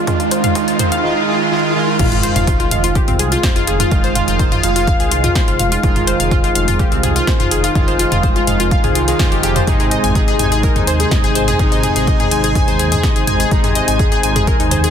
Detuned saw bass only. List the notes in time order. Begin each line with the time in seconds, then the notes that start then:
1.99 F1
2.36 F1
2.71 F1
3.08 C2
3.56 F1
3.91 F1
4.28 F1
4.63 F1
5.00 C2
5.48 F1
5.83 F1
6.20 F1
6.55 F1
6.92 C2
7.40 F1
7.75 F1
8.12 F1
8.47 F1
8.84 C2
9.32 F1
9.67 G#1
10.04 G#1
10.39 G#1
10.76 D#2
11.24 G#1
11.59 G#1
11.96 G#1
12.31 G#1
12.68 D#2
13.16 G#1
13.51 G#1
13.88 G#1
14.23 G#1
14.60 D#2